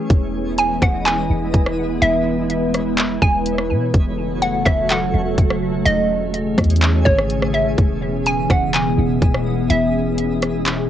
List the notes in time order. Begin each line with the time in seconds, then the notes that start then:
0.10 E1 E3 G#3 B3 E4 B4 D#5, kick, closed hi-hat
0.58 G#5, closed hi-hat
0.82 E1 F#5, kick, cross-stick, closed hi-hat
1.06 G#5, clap, closed hi-hat
1.30 E1
1.54 E1, kick, closed hi-hat
1.66 cross-stick
2.02 E1 E4 C#5 E5, closed hi-hat
2.50 closed hi-hat
2.74 cross-stick, closed hi-hat
2.98 clap, closed hi-hat
3.22 E1 G#5, kick
3.46 closed hi-hat
3.58 cross-stick
3.70 B2
3.94 E1 C#3 F#3 A3 F#4 A4, kick, closed hi-hat
4.42 F#5, closed hi-hat
4.65 E1 E5, kick, cross-stick, closed hi-hat
4.90 F#5, clap, closed hi-hat
5.14 E1
5.38 E1, kick, closed hi-hat
5.50 cross-stick
5.86 E1 E3 C#4 G#4 D#5, closed hi-hat
6.34 closed hi-hat
6.58 E2, kick, cross-stick, closed hi-hat
6.64 closed hi-hat
6.70 closed hi-hat
6.76 closed hi-hat
6.82 clap, closed hi-hat
7.05 G#1 C#5, kick
7.18 cross-stick
7.30 closed hi-hat
7.42 cross-stick
7.54 E5
7.78 E1 B2 G#3 B3 E4 D#6, kick, closed hi-hat
8.26 G#5, closed hi-hat
8.50 E1 F#5, kick, cross-stick, closed hi-hat
8.74 G#5, clap, closed hi-hat
8.98 E1
9.22 E1, kick, closed hi-hat
9.34 cross-stick
9.70 E1 E5, closed hi-hat
10.18 closed hi-hat
10.42 cross-stick, closed hi-hat
10.66 clap, closed hi-hat